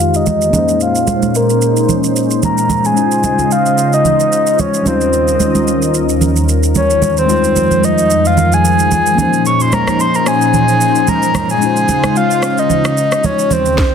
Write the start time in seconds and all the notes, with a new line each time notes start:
Already playing: F2 D#3 G#3 D#4 F4 G4 C5 F5
0.00 shaker
0.14 D#5, shaker
0.26 high conga, low conga, shaker
0.42 shaker
0.50 A#2 G#3 A#3 C#4 D#4 C5, high conga, low conga, shaker
0.55 G#4 C5 D#5
0.68 shaker
0.81 F5, shaker
0.95 shaker
1.07 high conga, shaker
1.22 high conga, shaker
1.35 A#4, shaker
1.50 shaker
1.62 shaker
1.77 shaker
1.89 low conga, shaker
2.04 shaker
2.16 shaker
2.31 shaker
2.43 A#5, high conga, low conga, shaker
2.58 shaker
2.69 high conga, low conga, shaker
2.85 G#5, shaker
2.93 C#3 G#3 C#4 D#4 F4 C5 D#5, shaker
2.99 E4 C5
3.06 F4
3.12 shaker
3.24 high conga, shaker
3.39 high conga, shaker
3.51 F5, shaker
3.66 shaker
3.78 shaker
3.93 D#5, shaker
4.05 low conga, shaker
4.20 shaker
4.32 shaker
4.47 shaker
4.59 C#5, high conga, low conga, shaker
4.74 shaker
4.83 D#2 D#3 G3 C#4 D#4 A#4 D#5, high conga, low conga, shaker
4.87 F4 C5
5.01 shaker
5.13 shaker
5.28 shaker
5.40 high conga, shaker
5.55 high conga, shaker
5.68 shaker
5.82 shaker
5.94 shaker
6.09 shaker
6.21 low conga, shaker
6.36 shaker
6.49 shaker
6.63 shaker
6.75 C#5, high conga, low conga, shaker
6.90 shaker
7.02 high conga, low conga, shaker
7.17 C5, shaker
7.26 F2 F3 G#3 D#4 F4, shaker
7.32 G3 C5
7.44 shaker
7.56 high conga, shaker
7.71 high conga, shaker
7.84 D#5, shaker
7.98 shaker
8.10 shaker
8.25 F5, shaker
8.37 low conga, shaker
8.52 G#5, shaker
8.65 G#5, shaker
8.79 shaker
8.91 high conga, low conga, shaker
9.06 shaker
9.15 A#3 C#4 D#4, high conga, low conga, shaker
9.19 A#2 C#4 D#4 G#4 C5
9.33 shaker
9.46 C#6, shaker
9.60 C6, shaker
9.72 A#5, cross-stick, high conga, shaker
9.87 cross-stick, high conga, shaker
10.00 C6, shaker
10.14 A#5, shaker
10.26 G#5, cross-stick, shaker
10.41 shaker
10.54 low conga, shaker
10.68 shaker
10.81 shaker
10.95 shaker
11.07 A#5, high conga, low conga, shaker
11.23 shaker
11.35 cross-stick, high conga, low conga, shaker
11.50 G#5, shaker
11.58 C#3 G#3 C#4 D#4 F4 C5, shaker
11.64 F4 C5
11.76 shaker
11.89 high conga, shaker
12.04 cross-stick, high conga, shaker
12.16 F5, shaker
12.31 shaker
12.43 cross-stick, shaker
12.58 D#5, shaker
12.70 low conga, shaker
12.85 cross-stick, shaker
12.97 shaker
13.12 cross-stick, shaker
13.24 C#5, high conga, low conga, shaker
13.39 shaker
13.51 D#2 D#3 C#4 G4 C5, high conga, low conga, shaker
13.66 shaker
13.78 kick, snare